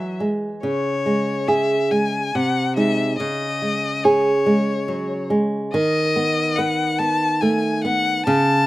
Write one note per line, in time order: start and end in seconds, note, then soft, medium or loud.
0.00 0.59 E3 medium
0.00 0.21 F#3 soft
0.00 0.21 E5 medium
0.20 0.63 G#3 soft
0.63 2.31 C#3 medium
0.63 1.50 C#5 medium
1.06 1.74 G#3 soft
1.48 2.17 G#4 medium
1.48 1.92 E5 medium
1.91 2.34 G#3 soft
1.91 2.36 G#5 medium
2.35 3.17 C3 medium
2.35 2.76 F#5 medium
2.76 3.16 G#3 soft
2.76 3.16 D#4 medium
2.76 3.18 E5 medium
3.19 5.70 C#3 medium
3.19 4.06 D#5 medium
3.62 4.30 G#3 soft
4.04 4.72 G#4 medium
4.04 5.31 C#5 medium
4.46 5.14 G#3 medium
4.88 5.31 F#3 medium
5.30 5.73 G#3 medium
5.73 8.23 D#3 medium
5.73 6.58 D#5 medium
6.16 6.83 B3 medium
6.56 7.25 B4 medium
6.56 7.00 F#5 medium
6.99 7.67 B3 medium
6.99 7.42 A5 medium
7.41 7.85 A3 medium
7.41 7.84 G#5 medium
7.84 8.28 B3 medium
7.84 8.25 F#5 medium
8.26 8.67 C#3 medium
8.26 8.67 A5 loud